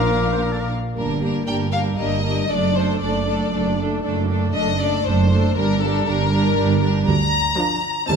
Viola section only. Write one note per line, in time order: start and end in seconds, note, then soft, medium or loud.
0.00 0.71 A#3 soft
0.00 0.72 D4 soft
0.96 1.20 G3 soft
0.96 1.20 A#3 soft
1.21 1.45 G3 soft
1.21 1.45 A#3 soft
1.46 1.72 G3 soft
1.46 1.72 A#3 soft
1.73 1.97 G3 soft
1.73 1.97 A#3 soft
1.98 2.24 G3 soft
1.98 2.23 A#3 soft
2.24 2.50 G3 soft
2.24 2.50 A#3 soft
2.49 2.74 A3 soft
2.49 2.75 D4 soft
2.75 3.00 A3 soft
2.75 3.00 D4 soft
3.01 3.26 A3 soft
3.01 3.26 D4 soft
3.27 3.52 A3 soft
3.27 3.52 D4 soft
3.53 3.78 A3 soft
3.53 3.78 D4 soft
3.79 4.03 A3 soft
3.79 4.03 D4 soft
4.04 4.29 A3 soft
4.04 4.29 D4 soft
4.30 4.53 A3 soft
4.30 4.54 D4 soft
4.55 4.78 A3 soft
4.55 4.79 D4 soft
4.80 5.05 A3 soft
4.80 5.05 D4 soft
5.06 5.30 A3 soft
5.06 5.29 D4 soft
5.30 5.55 A3 soft
5.30 5.55 D4 soft
5.56 5.80 G3 soft
5.56 5.81 D4 soft
5.82 6.06 G3 soft
5.82 6.05 D4 soft
6.07 6.31 G3 soft
6.07 6.31 D4 soft
6.32 6.55 G3 soft
6.32 6.55 D4 soft
6.56 6.80 G3 soft
6.56 6.80 D4 soft
6.81 7.06 G3 soft
6.81 7.06 D4 soft
7.56 7.95 F3 medium
7.56 7.95 D4 medium
8.09 8.16 G3 medium
8.09 8.16 C4 medium